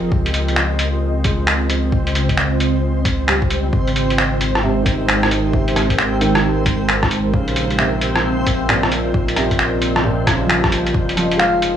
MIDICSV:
0, 0, Header, 1, 7, 480
1, 0, Start_track
1, 0, Tempo, 451128
1, 126, Time_signature, 4, 2, 24, 8
1, 12522, End_track
2, 0, Start_track
2, 0, Title_t, "Soft synth lead"
2, 0, Program_c, 0, 80
2, 12122, Note_on_c, 0, 77, 95
2, 12379, Note_off_c, 0, 77, 0
2, 12522, End_track
3, 0, Start_track
3, 0, Title_t, "Ambient pad"
3, 0, Program_c, 1, 92
3, 0, Note_on_c, 1, 53, 84
3, 0, Note_on_c, 1, 65, 85
3, 0, Note_on_c, 1, 67, 76
3, 0, Note_on_c, 1, 68, 69
3, 0, Note_on_c, 1, 70, 74
3, 0, Note_on_c, 1, 75, 83
3, 119, Note_on_c, 1, 49, 72
3, 130, Note_off_c, 1, 53, 0
3, 342, Note_on_c, 1, 60, 80
3, 686, Note_on_c, 1, 72, 77
3, 776, Note_off_c, 1, 68, 0
3, 1442, Note_off_c, 1, 67, 0
3, 1691, Note_off_c, 1, 70, 0
3, 3963, Note_off_c, 1, 49, 0
3, 3963, Note_off_c, 1, 60, 0
3, 3974, Note_on_c, 1, 56, 84
3, 4134, Note_on_c, 1, 70, 78
3, 4139, Note_on_c, 1, 63, 77
3, 4211, Note_on_c, 1, 67, 86
3, 5350, Note_off_c, 1, 65, 0
3, 5533, Note_off_c, 1, 75, 0
3, 7806, Note_off_c, 1, 67, 0
3, 7808, Note_on_c, 1, 58, 70
3, 7810, Note_off_c, 1, 56, 0
3, 7963, Note_on_c, 1, 65, 78
3, 8473, Note_off_c, 1, 70, 0
3, 8485, Note_on_c, 1, 70, 88
3, 8731, Note_on_c, 1, 75, 79
3, 9284, Note_off_c, 1, 63, 0
3, 11641, Note_on_c, 1, 53, 84
3, 11649, Note_off_c, 1, 70, 0
3, 11804, Note_on_c, 1, 63, 75
3, 11862, Note_on_c, 1, 70, 83
3, 12522, Note_off_c, 1, 53, 0
3, 12522, Note_off_c, 1, 58, 0
3, 12522, Note_off_c, 1, 63, 0
3, 12522, Note_off_c, 1, 65, 0
3, 12522, Note_off_c, 1, 70, 0
3, 12522, Note_off_c, 1, 72, 0
3, 12522, Note_off_c, 1, 75, 0
3, 12522, End_track
4, 0, Start_track
4, 0, Title_t, "Synth texture"
4, 0, Program_c, 2, 99
4, 0, Note_on_c, 2, 60, 85
4, 0, Note_on_c, 2, 72, 84
4, 11625, Note_off_c, 2, 60, 0
4, 11625, Note_off_c, 2, 72, 0
4, 11638, Note_on_c, 2, 60, 81
4, 11638, Note_on_c, 2, 72, 87
4, 12522, Note_off_c, 2, 60, 0
4, 12522, Note_off_c, 2, 72, 0
4, 12522, End_track
5, 0, Start_track
5, 0, Title_t, "Felt piano"
5, 0, Program_c, 3, 0
5, 0, Control_c, 3, 64, 127
5, 0, Note_on_c, 3, 58, 63
5, 0, Note_on_c, 3, 63, 51
5, 139, Control_c, 3, 64, 0
5, 142, Note_off_c, 3, 58, 0
5, 149, Note_off_c, 3, 63, 0
5, 311, Control_c, 3, 64, 127
5, 1322, Note_on_c, 3, 56, 56
5, 2671, Note_off_c, 3, 56, 0
5, 3484, Note_on_c, 3, 55, 74
5, 3979, Control_c, 3, 64, 0
5, 4162, Note_off_c, 3, 55, 0
5, 4196, Control_c, 3, 64, 127
5, 4931, Note_on_c, 3, 48, 63
5, 5137, Note_on_c, 3, 51, 51
5, 5877, Note_off_c, 3, 48, 0
5, 5893, Note_on_c, 3, 48, 58
5, 6419, Note_off_c, 3, 51, 0
5, 6607, Note_on_c, 3, 51, 71
5, 7237, Note_off_c, 3, 48, 0
5, 7811, Note_on_c, 3, 49, 71
5, 7819, Control_c, 3, 64, 0
5, 7954, Note_off_c, 3, 51, 0
5, 7988, Control_c, 3, 64, 127
5, 8287, Note_on_c, 3, 48, 61
5, 9156, Note_off_c, 3, 49, 0
5, 9247, Note_on_c, 3, 46, 68
5, 9634, Note_off_c, 3, 48, 0
5, 9963, Note_on_c, 3, 48, 56
5, 10594, Note_off_c, 3, 46, 0
5, 10686, Note_on_c, 3, 46, 70
5, 10930, Note_on_c, 3, 49, 73
5, 11132, Note_on_c, 3, 53, 51
5, 11267, Note_on_c, 3, 55, 53
5, 11312, Note_off_c, 3, 48, 0
5, 11661, Control_c, 3, 64, 0
5, 11843, Note_off_c, 3, 46, 0
5, 11845, Note_off_c, 3, 49, 0
5, 11861, Control_c, 3, 64, 127
5, 11867, Note_off_c, 3, 53, 0
5, 11883, Note_on_c, 3, 53, 74
5, 12088, Note_on_c, 3, 56, 49
5, 12134, Note_off_c, 3, 55, 0
5, 12522, Note_off_c, 3, 53, 0
5, 12522, Note_off_c, 3, 56, 0
5, 12522, End_track
6, 0, Start_track
6, 0, Title_t, "Sub bass"
6, 0, Program_c, 4, 38
6, 0, Note_on_c, 4, 29, 89
6, 108, Note_off_c, 4, 29, 0
6, 122, Note_on_c, 4, 37, 87
6, 3946, Note_off_c, 4, 37, 0
6, 3967, Note_on_c, 4, 32, 91
6, 7789, Note_off_c, 4, 32, 0
6, 7806, Note_on_c, 4, 34, 87
6, 11629, Note_off_c, 4, 34, 0
6, 11645, Note_on_c, 4, 29, 85
6, 12522, Note_off_c, 4, 29, 0
6, 12522, End_track
7, 0, Start_track
7, 0, Title_t, "Drums"
7, 124, Note_on_c, 9, 36, 115
7, 231, Note_off_c, 9, 36, 0
7, 276, Note_on_c, 9, 42, 29
7, 360, Note_off_c, 9, 42, 0
7, 360, Note_on_c, 9, 42, 55
7, 467, Note_off_c, 9, 42, 0
7, 515, Note_on_c, 9, 42, 30
7, 599, Note_on_c, 9, 26, 103
7, 621, Note_off_c, 9, 42, 0
7, 705, Note_off_c, 9, 26, 0
7, 839, Note_on_c, 9, 42, 57
7, 945, Note_off_c, 9, 42, 0
7, 1323, Note_on_c, 9, 42, 56
7, 1326, Note_on_c, 9, 36, 96
7, 1429, Note_off_c, 9, 42, 0
7, 1433, Note_off_c, 9, 36, 0
7, 1564, Note_on_c, 9, 26, 111
7, 1671, Note_off_c, 9, 26, 0
7, 1804, Note_on_c, 9, 42, 52
7, 1911, Note_off_c, 9, 42, 0
7, 2046, Note_on_c, 9, 36, 113
7, 2153, Note_off_c, 9, 36, 0
7, 2201, Note_on_c, 9, 42, 28
7, 2290, Note_off_c, 9, 42, 0
7, 2290, Note_on_c, 9, 42, 50
7, 2396, Note_off_c, 9, 42, 0
7, 2439, Note_on_c, 9, 36, 58
7, 2440, Note_on_c, 9, 42, 28
7, 2526, Note_on_c, 9, 26, 103
7, 2545, Note_off_c, 9, 36, 0
7, 2546, Note_off_c, 9, 42, 0
7, 2633, Note_off_c, 9, 26, 0
7, 2769, Note_on_c, 9, 42, 52
7, 2875, Note_off_c, 9, 42, 0
7, 3246, Note_on_c, 9, 42, 54
7, 3247, Note_on_c, 9, 36, 97
7, 3353, Note_off_c, 9, 36, 0
7, 3353, Note_off_c, 9, 42, 0
7, 3489, Note_on_c, 9, 26, 105
7, 3596, Note_off_c, 9, 26, 0
7, 3640, Note_on_c, 9, 36, 103
7, 3729, Note_on_c, 9, 42, 51
7, 3746, Note_off_c, 9, 36, 0
7, 3836, Note_off_c, 9, 42, 0
7, 3967, Note_on_c, 9, 36, 111
7, 4074, Note_off_c, 9, 36, 0
7, 4123, Note_on_c, 9, 42, 27
7, 4212, Note_off_c, 9, 42, 0
7, 4212, Note_on_c, 9, 42, 49
7, 4319, Note_off_c, 9, 42, 0
7, 4366, Note_on_c, 9, 42, 28
7, 4451, Note_on_c, 9, 26, 106
7, 4473, Note_off_c, 9, 42, 0
7, 4557, Note_off_c, 9, 26, 0
7, 4690, Note_on_c, 9, 42, 49
7, 4796, Note_off_c, 9, 42, 0
7, 4845, Note_on_c, 9, 37, 55
7, 4951, Note_off_c, 9, 37, 0
7, 5168, Note_on_c, 9, 36, 98
7, 5170, Note_on_c, 9, 42, 51
7, 5275, Note_off_c, 9, 36, 0
7, 5276, Note_off_c, 9, 42, 0
7, 5411, Note_on_c, 9, 26, 105
7, 5517, Note_off_c, 9, 26, 0
7, 5566, Note_on_c, 9, 37, 58
7, 5653, Note_on_c, 9, 42, 49
7, 5673, Note_off_c, 9, 37, 0
7, 5759, Note_off_c, 9, 42, 0
7, 5888, Note_on_c, 9, 36, 107
7, 5995, Note_off_c, 9, 36, 0
7, 6042, Note_on_c, 9, 42, 26
7, 6130, Note_off_c, 9, 42, 0
7, 6130, Note_on_c, 9, 37, 35
7, 6130, Note_on_c, 9, 42, 52
7, 6237, Note_off_c, 9, 37, 0
7, 6237, Note_off_c, 9, 42, 0
7, 6280, Note_on_c, 9, 36, 54
7, 6280, Note_on_c, 9, 42, 29
7, 6368, Note_on_c, 9, 26, 95
7, 6386, Note_off_c, 9, 36, 0
7, 6386, Note_off_c, 9, 42, 0
7, 6474, Note_off_c, 9, 26, 0
7, 6609, Note_on_c, 9, 42, 52
7, 6716, Note_off_c, 9, 42, 0
7, 6759, Note_on_c, 9, 37, 61
7, 6866, Note_off_c, 9, 37, 0
7, 7085, Note_on_c, 9, 42, 53
7, 7087, Note_on_c, 9, 36, 93
7, 7192, Note_off_c, 9, 42, 0
7, 7193, Note_off_c, 9, 36, 0
7, 7327, Note_on_c, 9, 26, 97
7, 7433, Note_off_c, 9, 26, 0
7, 7478, Note_on_c, 9, 37, 62
7, 7479, Note_on_c, 9, 36, 103
7, 7566, Note_on_c, 9, 42, 50
7, 7584, Note_off_c, 9, 37, 0
7, 7585, Note_off_c, 9, 36, 0
7, 7672, Note_off_c, 9, 42, 0
7, 7806, Note_on_c, 9, 36, 104
7, 7912, Note_off_c, 9, 36, 0
7, 7956, Note_on_c, 9, 42, 29
7, 8045, Note_off_c, 9, 42, 0
7, 8045, Note_on_c, 9, 42, 52
7, 8151, Note_off_c, 9, 42, 0
7, 8198, Note_on_c, 9, 42, 28
7, 8285, Note_on_c, 9, 26, 90
7, 8305, Note_off_c, 9, 42, 0
7, 8391, Note_off_c, 9, 26, 0
7, 8527, Note_on_c, 9, 42, 49
7, 8634, Note_off_c, 9, 42, 0
7, 8678, Note_on_c, 9, 37, 60
7, 8784, Note_off_c, 9, 37, 0
7, 9007, Note_on_c, 9, 42, 52
7, 9008, Note_on_c, 9, 36, 88
7, 9113, Note_off_c, 9, 42, 0
7, 9114, Note_off_c, 9, 36, 0
7, 9246, Note_on_c, 9, 26, 100
7, 9352, Note_off_c, 9, 26, 0
7, 9398, Note_on_c, 9, 37, 61
7, 9487, Note_on_c, 9, 42, 51
7, 9504, Note_off_c, 9, 37, 0
7, 9593, Note_off_c, 9, 42, 0
7, 9728, Note_on_c, 9, 36, 103
7, 9834, Note_off_c, 9, 36, 0
7, 9878, Note_on_c, 9, 42, 30
7, 9964, Note_off_c, 9, 42, 0
7, 9964, Note_on_c, 9, 37, 36
7, 9964, Note_on_c, 9, 42, 52
7, 10070, Note_off_c, 9, 37, 0
7, 10070, Note_off_c, 9, 42, 0
7, 10120, Note_on_c, 9, 42, 29
7, 10121, Note_on_c, 9, 36, 54
7, 10205, Note_on_c, 9, 26, 96
7, 10227, Note_off_c, 9, 36, 0
7, 10227, Note_off_c, 9, 42, 0
7, 10311, Note_off_c, 9, 26, 0
7, 10445, Note_on_c, 9, 42, 52
7, 10551, Note_off_c, 9, 42, 0
7, 10598, Note_on_c, 9, 37, 62
7, 10704, Note_off_c, 9, 37, 0
7, 10927, Note_on_c, 9, 36, 89
7, 10929, Note_on_c, 9, 37, 61
7, 10929, Note_on_c, 9, 42, 55
7, 11033, Note_off_c, 9, 36, 0
7, 11035, Note_off_c, 9, 37, 0
7, 11035, Note_off_c, 9, 42, 0
7, 11167, Note_on_c, 9, 26, 101
7, 11273, Note_off_c, 9, 26, 0
7, 11319, Note_on_c, 9, 36, 96
7, 11320, Note_on_c, 9, 37, 64
7, 11407, Note_on_c, 9, 42, 52
7, 11425, Note_off_c, 9, 36, 0
7, 11426, Note_off_c, 9, 37, 0
7, 11514, Note_off_c, 9, 42, 0
7, 11560, Note_on_c, 9, 42, 29
7, 11645, Note_on_c, 9, 36, 108
7, 11667, Note_off_c, 9, 42, 0
7, 11752, Note_off_c, 9, 36, 0
7, 11802, Note_on_c, 9, 42, 29
7, 11886, Note_off_c, 9, 42, 0
7, 11886, Note_on_c, 9, 42, 54
7, 11993, Note_off_c, 9, 42, 0
7, 12039, Note_on_c, 9, 42, 31
7, 12124, Note_on_c, 9, 26, 102
7, 12145, Note_off_c, 9, 42, 0
7, 12230, Note_off_c, 9, 26, 0
7, 12366, Note_on_c, 9, 42, 58
7, 12472, Note_off_c, 9, 42, 0
7, 12522, End_track
0, 0, End_of_file